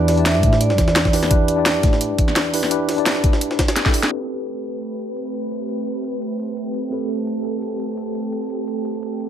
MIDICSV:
0, 0, Header, 1, 6, 480
1, 0, Start_track
1, 0, Key_signature, 0, "minor"
1, 0, Tempo, 350877
1, 1791, Time_signature, 4, 2, 24, 8
1, 12713, End_track
2, 0, Start_track
2, 0, Title_t, "Vibraphone"
2, 0, Program_c, 0, 11
2, 0, Note_on_c, 0, 74, 118
2, 196, Note_off_c, 0, 74, 0
2, 239, Note_on_c, 0, 76, 109
2, 289, Note_off_c, 0, 76, 0
2, 350, Note_on_c, 0, 76, 113
2, 831, Note_on_c, 0, 74, 101
2, 845, Note_off_c, 0, 76, 0
2, 5096, Note_off_c, 0, 74, 0
2, 12713, End_track
3, 0, Start_track
3, 0, Title_t, "Analog synth pad"
3, 0, Program_c, 1, 89
3, 5631, Note_on_c, 1, 57, 84
3, 5631, Note_on_c, 1, 67, 75
3, 5632, Note_on_c, 1, 60, 78
3, 5632, Note_on_c, 1, 71, 95
3, 9433, Note_off_c, 1, 71, 0
3, 9469, Note_on_c, 1, 69, 92
3, 12713, Note_off_c, 1, 57, 0
3, 12713, Note_off_c, 1, 60, 0
3, 12713, Note_off_c, 1, 67, 0
3, 12713, Note_off_c, 1, 69, 0
3, 12713, End_track
4, 0, Start_track
4, 0, Title_t, "Tine electric piano"
4, 0, Program_c, 2, 4
4, 0, Control_c, 2, 64, 127
4, 0, Note_on_c, 2, 62, 87
4, 0, Note_on_c, 2, 64, 77
4, 0, Note_on_c, 2, 67, 81
4, 0, Note_on_c, 2, 71, 94
4, 0, Note_on_c, 2, 74, 101
4, 204, Note_off_c, 2, 62, 0
4, 207, Note_off_c, 2, 64, 0
4, 211, Note_off_c, 2, 67, 0
4, 215, Note_off_c, 2, 71, 0
4, 219, Note_on_c, 2, 62, 92
4, 234, Note_on_c, 2, 64, 83
4, 250, Note_on_c, 2, 67, 83
4, 264, Note_off_c, 2, 74, 0
4, 264, Note_on_c, 2, 74, 105
4, 1274, Note_off_c, 2, 62, 0
4, 1282, Note_off_c, 2, 64, 0
4, 1289, Note_off_c, 2, 67, 0
4, 1296, Note_off_c, 2, 74, 0
4, 1539, Note_on_c, 2, 62, 94
4, 1546, Note_on_c, 2, 64, 86
4, 1554, Note_on_c, 2, 67, 88
4, 1561, Note_on_c, 2, 71, 104
4, 1758, Note_off_c, 2, 62, 0
4, 1762, Note_off_c, 2, 64, 0
4, 1765, Note_off_c, 2, 67, 0
4, 1769, Note_off_c, 2, 71, 0
4, 1779, Note_on_c, 2, 62, 88
4, 1786, Note_on_c, 2, 64, 81
4, 1793, Note_on_c, 2, 67, 81
4, 1801, Note_on_c, 2, 71, 93
4, 2119, Note_off_c, 2, 62, 0
4, 2126, Note_off_c, 2, 64, 0
4, 2130, Note_off_c, 2, 67, 0
4, 2134, Note_off_c, 2, 71, 0
4, 2136, Note_on_c, 2, 62, 96
4, 2151, Note_on_c, 2, 64, 83
4, 2166, Note_on_c, 2, 67, 85
4, 2180, Note_on_c, 2, 74, 97
4, 3192, Note_off_c, 2, 62, 0
4, 3200, Note_off_c, 2, 64, 0
4, 3207, Note_off_c, 2, 67, 0
4, 3214, Note_off_c, 2, 74, 0
4, 3458, Note_on_c, 2, 62, 90
4, 3466, Note_on_c, 2, 64, 88
4, 3472, Note_on_c, 2, 67, 85
4, 3481, Note_on_c, 2, 71, 100
4, 3678, Note_off_c, 2, 62, 0
4, 3682, Note_off_c, 2, 64, 0
4, 3685, Note_off_c, 2, 67, 0
4, 3689, Note_off_c, 2, 71, 0
4, 3697, Note_on_c, 2, 62, 86
4, 3705, Note_on_c, 2, 64, 77
4, 3712, Note_on_c, 2, 67, 80
4, 3720, Note_on_c, 2, 71, 95
4, 4038, Note_off_c, 2, 62, 0
4, 4045, Note_off_c, 2, 64, 0
4, 4049, Note_off_c, 2, 67, 0
4, 4053, Note_off_c, 2, 71, 0
4, 4055, Note_on_c, 2, 62, 96
4, 4069, Note_on_c, 2, 64, 84
4, 4085, Note_on_c, 2, 67, 85
4, 4099, Note_on_c, 2, 74, 102
4, 5112, Note_off_c, 2, 62, 0
4, 5119, Note_off_c, 2, 64, 0
4, 5127, Note_off_c, 2, 67, 0
4, 5134, Note_off_c, 2, 74, 0
4, 5266, Note_on_c, 2, 62, 88
4, 5274, Note_on_c, 2, 64, 80
4, 5281, Note_on_c, 2, 67, 76
4, 5288, Note_on_c, 2, 69, 94
4, 5597, Note_off_c, 2, 62, 0
4, 5601, Note_off_c, 2, 64, 0
4, 5605, Note_off_c, 2, 67, 0
4, 5607, Note_on_c, 2, 60, 73
4, 5608, Note_off_c, 2, 69, 0
4, 5622, Note_on_c, 2, 67, 66
4, 5636, Note_on_c, 2, 69, 67
4, 5647, Control_c, 2, 64, 0
4, 5651, Note_on_c, 2, 71, 82
4, 5890, Control_c, 2, 64, 127
4, 9432, Note_off_c, 2, 60, 0
4, 9440, Note_off_c, 2, 67, 0
4, 9446, Note_on_c, 2, 60, 71
4, 9447, Note_off_c, 2, 69, 0
4, 9454, Note_off_c, 2, 71, 0
4, 9460, Note_on_c, 2, 67, 67
4, 9475, Note_on_c, 2, 69, 70
4, 9491, Note_on_c, 2, 71, 80
4, 12713, Note_off_c, 2, 60, 0
4, 12713, Note_off_c, 2, 67, 0
4, 12713, Note_off_c, 2, 69, 0
4, 12713, Note_off_c, 2, 71, 0
4, 12713, End_track
5, 0, Start_track
5, 0, Title_t, "Upright bass"
5, 0, Program_c, 3, 32
5, 0, Note_on_c, 3, 40, 102
5, 590, Note_off_c, 3, 40, 0
5, 590, Note_on_c, 3, 45, 77
5, 1070, Note_off_c, 3, 45, 0
5, 1070, Note_on_c, 3, 40, 99
5, 2510, Note_off_c, 3, 40, 0
5, 2510, Note_on_c, 3, 45, 80
5, 2989, Note_off_c, 3, 45, 0
5, 2989, Note_on_c, 3, 40, 92
5, 4429, Note_off_c, 3, 40, 0
5, 4429, Note_on_c, 3, 45, 76
5, 4909, Note_off_c, 3, 45, 0
5, 4909, Note_on_c, 3, 43, 95
5, 5372, Note_off_c, 3, 43, 0
5, 12713, End_track
6, 0, Start_track
6, 0, Title_t, "Drums"
6, 111, Note_on_c, 9, 38, 44
6, 111, Note_on_c, 9, 42, 70
6, 111, Note_on_c, 9, 46, 83
6, 240, Note_off_c, 9, 42, 0
6, 240, Note_on_c, 9, 42, 45
6, 248, Note_off_c, 9, 38, 0
6, 248, Note_off_c, 9, 46, 0
6, 351, Note_off_c, 9, 42, 0
6, 351, Note_on_c, 9, 38, 115
6, 351, Note_on_c, 9, 42, 89
6, 353, Note_off_c, 9, 38, 0
6, 353, Note_off_c, 9, 42, 0
6, 353, Note_on_c, 9, 38, 115
6, 353, Note_on_c, 9, 42, 100
6, 479, Note_off_c, 9, 38, 0
6, 479, Note_on_c, 9, 38, 43
6, 489, Note_off_c, 9, 42, 0
6, 590, Note_on_c, 9, 42, 63
6, 591, Note_on_c, 9, 36, 108
6, 592, Note_off_c, 9, 42, 0
6, 592, Note_on_c, 9, 42, 65
6, 616, Note_off_c, 9, 38, 0
6, 721, Note_on_c, 9, 38, 59
6, 728, Note_off_c, 9, 36, 0
6, 729, Note_off_c, 9, 42, 0
6, 830, Note_on_c, 9, 42, 90
6, 857, Note_off_c, 9, 38, 0
6, 959, Note_on_c, 9, 38, 48
6, 967, Note_off_c, 9, 42, 0
6, 1070, Note_on_c, 9, 42, 67
6, 1071, Note_off_c, 9, 38, 0
6, 1071, Note_off_c, 9, 42, 0
6, 1071, Note_on_c, 9, 36, 61
6, 1071, Note_on_c, 9, 38, 54
6, 1071, Note_on_c, 9, 42, 70
6, 1200, Note_off_c, 9, 38, 0
6, 1200, Note_on_c, 9, 38, 61
6, 1207, Note_off_c, 9, 36, 0
6, 1208, Note_off_c, 9, 42, 0
6, 1310, Note_off_c, 9, 38, 0
6, 1310, Note_on_c, 9, 38, 113
6, 1310, Note_on_c, 9, 42, 89
6, 1311, Note_off_c, 9, 38, 0
6, 1311, Note_off_c, 9, 42, 0
6, 1311, Note_on_c, 9, 38, 121
6, 1311, Note_on_c, 9, 42, 94
6, 1439, Note_on_c, 9, 36, 62
6, 1440, Note_off_c, 9, 38, 0
6, 1440, Note_on_c, 9, 38, 60
6, 1448, Note_off_c, 9, 42, 0
6, 1550, Note_on_c, 9, 46, 88
6, 1551, Note_off_c, 9, 38, 0
6, 1551, Note_on_c, 9, 38, 54
6, 1551, Note_on_c, 9, 42, 69
6, 1576, Note_off_c, 9, 36, 0
6, 1678, Note_on_c, 9, 40, 48
6, 1680, Note_off_c, 9, 38, 0
6, 1680, Note_on_c, 9, 38, 43
6, 1687, Note_off_c, 9, 46, 0
6, 1688, Note_off_c, 9, 42, 0
6, 1788, Note_on_c, 9, 42, 97
6, 1790, Note_off_c, 9, 42, 0
6, 1790, Note_on_c, 9, 36, 113
6, 1790, Note_on_c, 9, 42, 87
6, 1814, Note_off_c, 9, 40, 0
6, 1817, Note_off_c, 9, 38, 0
6, 1927, Note_off_c, 9, 36, 0
6, 1927, Note_off_c, 9, 42, 0
6, 2028, Note_on_c, 9, 42, 73
6, 2030, Note_off_c, 9, 42, 0
6, 2030, Note_on_c, 9, 42, 71
6, 2167, Note_off_c, 9, 42, 0
6, 2268, Note_on_c, 9, 38, 119
6, 2268, Note_on_c, 9, 42, 95
6, 2269, Note_off_c, 9, 38, 0
6, 2269, Note_off_c, 9, 42, 0
6, 2269, Note_on_c, 9, 38, 122
6, 2269, Note_on_c, 9, 42, 92
6, 2406, Note_off_c, 9, 38, 0
6, 2406, Note_off_c, 9, 42, 0
6, 2507, Note_on_c, 9, 42, 66
6, 2510, Note_on_c, 9, 36, 105
6, 2511, Note_off_c, 9, 42, 0
6, 2511, Note_on_c, 9, 38, 39
6, 2511, Note_on_c, 9, 42, 69
6, 2639, Note_off_c, 9, 38, 0
6, 2639, Note_on_c, 9, 38, 51
6, 2647, Note_off_c, 9, 36, 0
6, 2648, Note_off_c, 9, 42, 0
6, 2747, Note_on_c, 9, 42, 96
6, 2751, Note_off_c, 9, 42, 0
6, 2751, Note_on_c, 9, 42, 88
6, 2776, Note_off_c, 9, 38, 0
6, 2888, Note_off_c, 9, 42, 0
6, 2989, Note_on_c, 9, 42, 66
6, 2990, Note_off_c, 9, 42, 0
6, 2990, Note_on_c, 9, 36, 60
6, 2990, Note_on_c, 9, 42, 69
6, 3118, Note_on_c, 9, 40, 37
6, 3127, Note_off_c, 9, 36, 0
6, 3127, Note_off_c, 9, 42, 0
6, 3228, Note_on_c, 9, 38, 117
6, 3228, Note_on_c, 9, 42, 95
6, 3230, Note_off_c, 9, 38, 0
6, 3230, Note_off_c, 9, 42, 0
6, 3230, Note_on_c, 9, 38, 120
6, 3230, Note_on_c, 9, 42, 92
6, 3255, Note_off_c, 9, 40, 0
6, 3358, Note_off_c, 9, 42, 0
6, 3358, Note_on_c, 9, 42, 47
6, 3366, Note_off_c, 9, 38, 0
6, 3469, Note_on_c, 9, 46, 83
6, 3470, Note_off_c, 9, 42, 0
6, 3470, Note_on_c, 9, 42, 73
6, 3596, Note_on_c, 9, 40, 46
6, 3599, Note_on_c, 9, 38, 49
6, 3606, Note_off_c, 9, 46, 0
6, 3607, Note_off_c, 9, 42, 0
6, 3707, Note_on_c, 9, 42, 100
6, 3710, Note_off_c, 9, 42, 0
6, 3710, Note_on_c, 9, 42, 91
6, 3733, Note_off_c, 9, 40, 0
6, 3736, Note_off_c, 9, 38, 0
6, 3846, Note_off_c, 9, 42, 0
6, 3949, Note_on_c, 9, 42, 72
6, 3950, Note_on_c, 9, 38, 45
6, 3950, Note_on_c, 9, 46, 83
6, 4078, Note_off_c, 9, 42, 0
6, 4078, Note_on_c, 9, 42, 48
6, 4087, Note_off_c, 9, 38, 0
6, 4087, Note_off_c, 9, 46, 0
6, 4188, Note_off_c, 9, 42, 0
6, 4188, Note_on_c, 9, 38, 123
6, 4188, Note_on_c, 9, 42, 100
6, 4190, Note_off_c, 9, 38, 0
6, 4190, Note_off_c, 9, 42, 0
6, 4190, Note_on_c, 9, 38, 123
6, 4190, Note_on_c, 9, 42, 91
6, 4319, Note_off_c, 9, 38, 0
6, 4319, Note_on_c, 9, 38, 42
6, 4327, Note_off_c, 9, 42, 0
6, 4429, Note_on_c, 9, 42, 67
6, 4430, Note_on_c, 9, 36, 107
6, 4431, Note_off_c, 9, 42, 0
6, 4431, Note_on_c, 9, 42, 69
6, 4456, Note_off_c, 9, 38, 0
6, 4558, Note_on_c, 9, 38, 60
6, 4567, Note_off_c, 9, 36, 0
6, 4568, Note_off_c, 9, 42, 0
6, 4669, Note_on_c, 9, 42, 99
6, 4670, Note_off_c, 9, 42, 0
6, 4670, Note_on_c, 9, 42, 92
6, 4695, Note_off_c, 9, 38, 0
6, 4799, Note_on_c, 9, 38, 47
6, 4807, Note_off_c, 9, 42, 0
6, 4910, Note_off_c, 9, 38, 0
6, 4910, Note_on_c, 9, 36, 64
6, 4910, Note_on_c, 9, 38, 106
6, 4910, Note_on_c, 9, 42, 81
6, 5040, Note_off_c, 9, 38, 0
6, 5040, Note_off_c, 9, 42, 0
6, 5040, Note_on_c, 9, 38, 114
6, 5040, Note_on_c, 9, 42, 84
6, 5047, Note_off_c, 9, 36, 0
6, 5148, Note_off_c, 9, 38, 0
6, 5148, Note_off_c, 9, 42, 0
6, 5148, Note_on_c, 9, 38, 61
6, 5148, Note_on_c, 9, 42, 99
6, 5151, Note_off_c, 9, 42, 0
6, 5151, Note_on_c, 9, 42, 82
6, 5275, Note_off_c, 9, 38, 0
6, 5275, Note_on_c, 9, 38, 65
6, 5278, Note_on_c, 9, 36, 61
6, 5288, Note_off_c, 9, 42, 0
6, 5387, Note_on_c, 9, 46, 81
6, 5392, Note_on_c, 9, 42, 60
6, 5412, Note_off_c, 9, 38, 0
6, 5415, Note_off_c, 9, 36, 0
6, 5516, Note_off_c, 9, 42, 0
6, 5516, Note_on_c, 9, 38, 81
6, 5516, Note_on_c, 9, 42, 39
6, 5524, Note_off_c, 9, 46, 0
6, 5628, Note_off_c, 9, 42, 0
6, 5628, Note_on_c, 9, 42, 89
6, 5652, Note_off_c, 9, 38, 0
6, 5764, Note_off_c, 9, 42, 0
6, 6109, Note_on_c, 9, 42, 91
6, 6246, Note_off_c, 9, 42, 0
6, 6349, Note_on_c, 9, 42, 64
6, 6485, Note_off_c, 9, 42, 0
6, 6588, Note_on_c, 9, 42, 94
6, 6725, Note_off_c, 9, 42, 0
6, 6829, Note_on_c, 9, 42, 62
6, 6965, Note_off_c, 9, 42, 0
6, 7067, Note_on_c, 9, 42, 90
6, 7204, Note_off_c, 9, 42, 0
6, 7309, Note_on_c, 9, 42, 66
6, 7445, Note_off_c, 9, 42, 0
6, 7549, Note_on_c, 9, 42, 86
6, 7685, Note_off_c, 9, 42, 0
6, 7789, Note_on_c, 9, 42, 65
6, 7926, Note_off_c, 9, 42, 0
6, 8029, Note_on_c, 9, 42, 89
6, 8166, Note_off_c, 9, 42, 0
6, 8268, Note_on_c, 9, 42, 60
6, 8405, Note_off_c, 9, 42, 0
6, 8508, Note_on_c, 9, 42, 91
6, 8645, Note_off_c, 9, 42, 0
6, 8750, Note_on_c, 9, 42, 60
6, 8887, Note_off_c, 9, 42, 0
6, 8989, Note_on_c, 9, 42, 89
6, 9126, Note_off_c, 9, 42, 0
6, 9229, Note_on_c, 9, 42, 65
6, 9366, Note_off_c, 9, 42, 0
6, 9470, Note_on_c, 9, 42, 82
6, 9607, Note_off_c, 9, 42, 0
6, 9710, Note_on_c, 9, 42, 63
6, 9847, Note_off_c, 9, 42, 0
6, 9948, Note_on_c, 9, 42, 83
6, 10085, Note_off_c, 9, 42, 0
6, 10189, Note_on_c, 9, 42, 58
6, 10325, Note_off_c, 9, 42, 0
6, 10429, Note_on_c, 9, 42, 84
6, 10566, Note_off_c, 9, 42, 0
6, 10668, Note_on_c, 9, 42, 61
6, 10805, Note_off_c, 9, 42, 0
6, 10910, Note_on_c, 9, 42, 87
6, 11046, Note_off_c, 9, 42, 0
6, 11150, Note_on_c, 9, 42, 62
6, 11286, Note_off_c, 9, 42, 0
6, 11390, Note_on_c, 9, 42, 82
6, 11527, Note_off_c, 9, 42, 0
6, 11630, Note_on_c, 9, 42, 59
6, 11767, Note_off_c, 9, 42, 0
6, 11869, Note_on_c, 9, 42, 85
6, 12006, Note_off_c, 9, 42, 0
6, 12109, Note_on_c, 9, 42, 58
6, 12238, Note_off_c, 9, 42, 0
6, 12238, Note_on_c, 9, 42, 34
6, 12351, Note_off_c, 9, 42, 0
6, 12351, Note_on_c, 9, 42, 84
6, 12488, Note_off_c, 9, 42, 0
6, 12590, Note_on_c, 9, 42, 60
6, 12713, Note_off_c, 9, 42, 0
6, 12713, End_track
0, 0, End_of_file